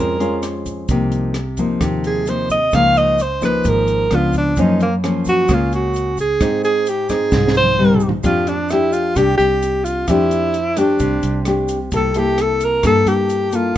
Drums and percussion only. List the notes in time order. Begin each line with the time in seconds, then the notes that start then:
0.20 closed hi-hat, shaker
0.42 cross-stick, closed hi-hat, shaker
0.66 kick, closed hi-hat, shaker
0.88 kick, closed hi-hat, shaker
1.12 closed hi-hat, shaker
1.34 cross-stick, closed hi-hat
1.57 kick, closed hi-hat, shaker
1.81 kick, cross-stick, closed hi-hat, shaker
2.04 closed hi-hat, shaker
2.26 closed hi-hat, shaker
2.50 kick, closed hi-hat, shaker
2.71 kick, cross-stick, closed hi-hat, shaker
2.94 closed hi-hat, shaker
3.18 closed hi-hat, shaker
3.42 kick, cross-stick, closed hi-hat, shaker
3.64 kick, closed hi-hat, shaker
3.87 closed hi-hat, shaker
4.11 cross-stick, closed hi-hat
4.33 kick, closed hi-hat, shaker
4.56 kick, closed hi-hat, shaker
4.79 closed hi-hat, shaker
5.04 cross-stick, closed hi-hat
5.25 kick, closed hi-hat, shaker
5.48 kick, cross-stick, closed hi-hat, shaker
5.71 closed hi-hat, shaker
5.94 closed hi-hat, shaker
6.17 kick, closed hi-hat, shaker
6.40 kick, cross-stick, closed hi-hat, shaker
6.64 closed hi-hat, shaker
6.86 closed hi-hat, shaker
7.09 kick, cross-stick, closed hi-hat, shaker
7.31 kick, snare, shaker
7.48 snare
7.54 shaker
7.63 high tom
7.79 mid tom
7.94 mid tom
8.00 shaker
8.09 floor tom
8.23 kick, closed hi-hat, shaker
8.47 closed hi-hat, shaker
8.69 cross-stick, closed hi-hat, shaker
8.92 closed hi-hat, shaker
9.15 kick, cross-stick, closed hi-hat, shaker
9.39 closed hi-hat, shaker
9.62 closed hi-hat, shaker
9.85 closed hi-hat, shaker
10.07 kick, cross-stick, closed hi-hat, shaker
10.31 closed hi-hat, shaker
10.54 closed hi-hat
10.77 cross-stick, closed hi-hat, shaker
10.99 kick, closed hi-hat, shaker
11.22 closed hi-hat, shaker
11.45 cross-stick, closed hi-hat, shaker
11.68 closed hi-hat, shaker
11.91 kick, closed hi-hat, shaker
12.14 closed hi-hat, shaker
12.38 cross-stick, closed hi-hat
12.60 closed hi-hat, shaker
12.83 kick, cross-stick, closed hi-hat, shaker
13.07 closed hi-hat, shaker
13.29 closed hi-hat, shaker
13.52 closed hi-hat, shaker